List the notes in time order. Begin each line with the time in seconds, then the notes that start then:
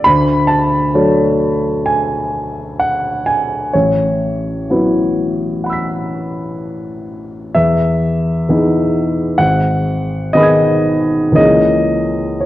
0.04 D2 B5
0.47 A5
0.94 F#3 A3 D4 C#5
1.86 G#5
2.80 F#5
3.26 G#5
3.74 A1 C#5
4.70 F#3 B3 E4 B4
5.64 F#5 B5
5.70 E6 B6
7.55 E2 E5
8.49 E3 B3 D#4 G#4
9.38 G#1 F#5
10.33 D#3 B3 D#4 G#4 D#5 B5
10.41 D#6 G#6
11.32 C#2 E3 A#3 C#4
11.36 G#4 D#5
12.41 C#5